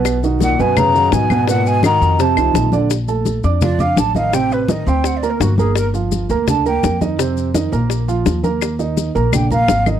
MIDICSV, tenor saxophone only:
0, 0, Header, 1, 2, 480
1, 0, Start_track
1, 0, Key_signature, -2, "major"
1, 0, Tempo, 356718
1, 77, Time_signature, 4, 2, 24, 8
1, 13453, End_track
2, 0, Start_track
2, 0, Title_t, "Tenor saxophone"
2, 0, Program_c, 0, 66
2, 556, Note_on_c, 0, 46, 80
2, 790, Note_on_c, 0, 47, 89
2, 810, Note_off_c, 0, 46, 0
2, 1028, Note_on_c, 0, 49, 96
2, 1048, Note_off_c, 0, 47, 0
2, 1514, Note_on_c, 0, 47, 92
2, 1534, Note_off_c, 0, 49, 0
2, 1977, Note_off_c, 0, 47, 0
2, 1985, Note_on_c, 0, 46, 80
2, 2238, Note_on_c, 0, 47, 82
2, 2259, Note_off_c, 0, 46, 0
2, 2475, Note_off_c, 0, 47, 0
2, 2486, Note_on_c, 0, 51, 92
2, 2960, Note_on_c, 0, 48, 75
2, 2981, Note_off_c, 0, 51, 0
2, 3676, Note_off_c, 0, 48, 0
2, 13453, End_track
0, 0, End_of_file